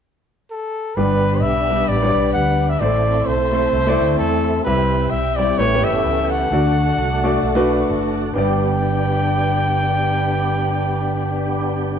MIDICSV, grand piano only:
0, 0, Header, 1, 2, 480
1, 0, Start_track
1, 0, Key_signature, 1, "major"
1, 0, Tempo, 460476
1, 1022, Time_signature, 4, 2, 24, 8
1, 12501, End_track
2, 0, Start_track
2, 0, Title_t, "Grand piano"
2, 0, Program_c, 0, 0
2, 1012, Note_on_c, 0, 55, 61
2, 1012, Note_on_c, 0, 62, 58
2, 1017, Note_on_c, 0, 43, 49
2, 1018, Note_on_c, 0, 71, 59
2, 1019, Note_on_c, 0, 59, 50
2, 1560, Note_off_c, 0, 55, 0
2, 1561, Note_off_c, 0, 62, 0
2, 1564, Note_off_c, 0, 59, 0
2, 1564, Note_off_c, 0, 71, 0
2, 1726, Note_off_c, 0, 43, 0
2, 1774, Note_on_c, 0, 55, 57
2, 1775, Note_on_c, 0, 59, 46
2, 1777, Note_on_c, 0, 62, 52
2, 1784, Note_on_c, 0, 71, 56
2, 2014, Note_off_c, 0, 55, 0
2, 2014, Note_off_c, 0, 59, 0
2, 2016, Note_off_c, 0, 62, 0
2, 2019, Note_off_c, 0, 71, 0
2, 2109, Note_on_c, 0, 55, 67
2, 2115, Note_on_c, 0, 59, 62
2, 2115, Note_on_c, 0, 62, 59
2, 2118, Note_on_c, 0, 73, 57
2, 2172, Note_on_c, 0, 74, 72
2, 2181, Note_off_c, 0, 73, 0
2, 2750, Note_off_c, 0, 55, 0
2, 2752, Note_off_c, 0, 59, 0
2, 2753, Note_off_c, 0, 62, 0
2, 2781, Note_off_c, 0, 74, 0
2, 2932, Note_on_c, 0, 45, 49
2, 2933, Note_on_c, 0, 57, 58
2, 2933, Note_on_c, 0, 60, 49
2, 2936, Note_on_c, 0, 64, 49
2, 2941, Note_on_c, 0, 72, 58
2, 3480, Note_off_c, 0, 57, 0
2, 3480, Note_off_c, 0, 60, 0
2, 3482, Note_off_c, 0, 64, 0
2, 3484, Note_off_c, 0, 72, 0
2, 3643, Note_off_c, 0, 45, 0
2, 3674, Note_on_c, 0, 57, 57
2, 3679, Note_on_c, 0, 60, 47
2, 3684, Note_on_c, 0, 64, 50
2, 3690, Note_on_c, 0, 72, 55
2, 3923, Note_off_c, 0, 57, 0
2, 3926, Note_off_c, 0, 60, 0
2, 3928, Note_off_c, 0, 64, 0
2, 3931, Note_off_c, 0, 72, 0
2, 4033, Note_on_c, 0, 57, 79
2, 4039, Note_on_c, 0, 64, 76
2, 4040, Note_on_c, 0, 60, 67
2, 4049, Note_on_c, 0, 74, 88
2, 4672, Note_off_c, 0, 57, 0
2, 4675, Note_off_c, 0, 60, 0
2, 4675, Note_off_c, 0, 64, 0
2, 4680, Note_off_c, 0, 74, 0
2, 4862, Note_on_c, 0, 48, 53
2, 4862, Note_on_c, 0, 55, 55
2, 4862, Note_on_c, 0, 60, 54
2, 4865, Note_on_c, 0, 64, 55
2, 4872, Note_on_c, 0, 76, 62
2, 5406, Note_off_c, 0, 55, 0
2, 5406, Note_off_c, 0, 60, 0
2, 5407, Note_off_c, 0, 64, 0
2, 5411, Note_off_c, 0, 76, 0
2, 5569, Note_off_c, 0, 48, 0
2, 5612, Note_on_c, 0, 55, 58
2, 5616, Note_on_c, 0, 60, 49
2, 5618, Note_on_c, 0, 64, 50
2, 5622, Note_on_c, 0, 74, 60
2, 5821, Note_off_c, 0, 55, 0
2, 5822, Note_off_c, 0, 60, 0
2, 5824, Note_off_c, 0, 64, 0
2, 5826, Note_off_c, 0, 74, 0
2, 5832, Note_on_c, 0, 57, 66
2, 5840, Note_on_c, 0, 45, 52
2, 5841, Note_on_c, 0, 67, 52
2, 5841, Note_on_c, 0, 71, 70
2, 5843, Note_on_c, 0, 61, 58
2, 5934, Note_off_c, 0, 57, 0
2, 5938, Note_off_c, 0, 67, 0
2, 5938, Note_off_c, 0, 71, 0
2, 5939, Note_off_c, 0, 61, 0
2, 5985, Note_on_c, 0, 61, 60
2, 5986, Note_on_c, 0, 57, 66
2, 5988, Note_on_c, 0, 67, 62
2, 5992, Note_on_c, 0, 71, 75
2, 6539, Note_off_c, 0, 45, 0
2, 6611, Note_off_c, 0, 57, 0
2, 6611, Note_off_c, 0, 61, 0
2, 6612, Note_off_c, 0, 67, 0
2, 6614, Note_off_c, 0, 71, 0
2, 6800, Note_on_c, 0, 57, 58
2, 6801, Note_on_c, 0, 62, 51
2, 6803, Note_on_c, 0, 66, 53
2, 6806, Note_on_c, 0, 50, 50
2, 6812, Note_on_c, 0, 74, 63
2, 7338, Note_off_c, 0, 57, 0
2, 7338, Note_off_c, 0, 62, 0
2, 7339, Note_off_c, 0, 66, 0
2, 7343, Note_off_c, 0, 74, 0
2, 7504, Note_off_c, 0, 50, 0
2, 7545, Note_on_c, 0, 57, 68
2, 7547, Note_on_c, 0, 62, 60
2, 7551, Note_on_c, 0, 66, 63
2, 7558, Note_on_c, 0, 74, 75
2, 7782, Note_off_c, 0, 57, 0
2, 7784, Note_off_c, 0, 62, 0
2, 7786, Note_off_c, 0, 66, 0
2, 7789, Note_off_c, 0, 74, 0
2, 7872, Note_on_c, 0, 57, 80
2, 7877, Note_on_c, 0, 66, 69
2, 7878, Note_on_c, 0, 62, 69
2, 7883, Note_on_c, 0, 71, 87
2, 8517, Note_off_c, 0, 57, 0
2, 8519, Note_off_c, 0, 66, 0
2, 8520, Note_off_c, 0, 62, 0
2, 8522, Note_off_c, 0, 71, 0
2, 8691, Note_on_c, 0, 59, 61
2, 8704, Note_on_c, 0, 62, 57
2, 8714, Note_on_c, 0, 43, 64
2, 8720, Note_on_c, 0, 67, 58
2, 8737, Note_on_c, 0, 74, 73
2, 12466, Note_off_c, 0, 59, 0
2, 12479, Note_off_c, 0, 62, 0
2, 12489, Note_off_c, 0, 43, 0
2, 12495, Note_off_c, 0, 67, 0
2, 12501, Note_off_c, 0, 74, 0
2, 12501, End_track
0, 0, End_of_file